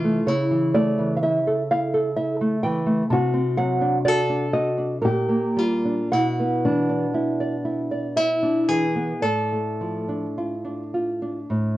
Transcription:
Already playing: C3 E3 F4
0.04 A3
0.26 C#3 E4 C#5
0.51 E3
0.74 A3 D5
0.99 E3
1.17 F5
1.23 E4 E5
1.47 A4
1.71 E4 F5
1.94 A4
2.16 E4 E5
2.41 A3
2.63 E3 G5
2.86 A3
3.10 C3 F#4 A5
3.34 C4
3.57 F#3 F#5
3.81 D4
4.05 F#4 A4 D5
4.29 D4
4.53 F#4 D#5
4.78 D4
5.02 A#2 G4 A#4
5.29 A#3
5.56 G3 F4
5.85 D4
6.12 B2 E4 F#5
6.40 B3
6.65 E3 D4
6.89 D4
7.14 E4
7.40 D5
7.65 E4
7.91 D5
8.16 E4 E5
8.42 D4
8.68 E3 G#4
8.96 B3
9.22 A2 A4 D5
9.53 A3
9.81 F3
10.09 D4
10.38 F4
10.64 D4
10.94 F4
11.22 D4
11.50 A2

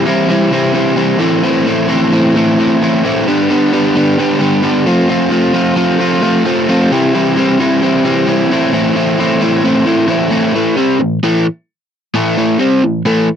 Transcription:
0.06 C3 E3 G3 C4 E4
0.28 C3 E3 G3 C4 E4
0.51 C3 E3 G3 C4 E4
0.73 C3 E3 G3 C4 E4
0.96 C3 E3 G3 C4 E4
1.19 A2 E3 A3 C4 E4
1.42 A2 E3 A3 C4 E4
1.65 A2 E3 A3 C4 E4
1.88 A2 E3 A3 C4 E4
2.12 A2 E3 A3 C4 E4
2.35 A2 E3 A3 C4 E4
2.58 A2 E3 A3 C4 E4
2.82 A2 E3 A3 C4 E4
3.04 A2 E3 A3 C4 E4
3.27 G2 D3 G3 B3 D4
3.50 G2 D3 G3 B3 D4
3.72 G2 D3 G3 B3 D4
3.95 G2 D3 G3 B3 D4
4.18 G2 D3 G3 B3 D4
4.38 G2 D3 G3 B3 D4
4.63 G2 D3 G3 B3 D4
4.86 F3 A3 C4 F4
5.08 F3 A3 C4 F4
5.30 F3 A3 C4 F4
5.53 F3 A3 C4 F4
5.76 F3 A3 C4 F4
5.99 F3 A3 C4 F4
6.22 F3 A3 C4 F4
6.45 F3 A3 C4 F4
6.69 F3 A3 C4 F4
6.91 C3 E3 G3 C4 E4
7.13 C3 E3 G3 C4 E4
7.36 C3 E3 G3 C4 E4
7.59 C3 E3 G3 C4 E4
7.81 C3 E3 G3 C4 E4
8.03 C3 E3 G3 C4 E4
8.26 C3 E3 G3 C4 E4
8.50 A2 E3 A3 C4 E4
8.72 A2 E3 A3 C4 E4
8.95 A2 E3 A3 C4 E4
9.18 A2 E3 A3 C4 E4
9.40 A2 E3 A3 C4 E4
9.63 A2 E3 A3 C4 E4
9.85 A2 E3 A3 C4 E4
10.08 A2 E3 A3 C4 E4
10.30 A2 E3 A3 C4 E4
10.55 A2 E3 A3
10.76 C3 G3 C4
11.00 A2 E3
11.23 A2 E3 A3
12.14 A2 E3 A3
12.37 A2 E3 A3
12.59 C3 G3 C4
12.84 A2 E3
13.05 A2 E3 A3

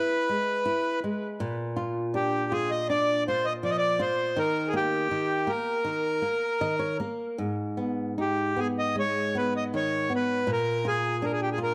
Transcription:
Already playing: E4 B4
0.29 G#3
0.65 E4
1.04 G#3
1.40 A#2
1.76 F4
2.14 D4 G4
2.52 F4 G#4
2.71 D#5
2.89 D4 D5
3.28 F4 C5
3.45 D#5
3.63 F3 D5
3.70 D#5
3.78 D5
3.99 F4 C5
4.36 D#3 A#4
4.68 G#4
4.73 A#3 G4
5.11 D#3
5.47 A#3 A#4
5.84 D#3
6.22 A#3
6.61 D#3 D#5
6.79 C#5
7.00 A#3 A#4
7.38 G#2
7.77 B3
8.18 D#4 G4
8.57 B3 G#4
8.79 D#5
8.95 G#3 C#5
9.35 B3 B4
9.56 D#5
9.74 D#3 C#5
10.10 B3
10.16 B4
10.47 A#2
10.52 A#4
10.85 F4 G#4
11.22 D4 A#4
11.33 G#4
11.42 G4
11.52 G#4
11.58 F4
11.63 A#4

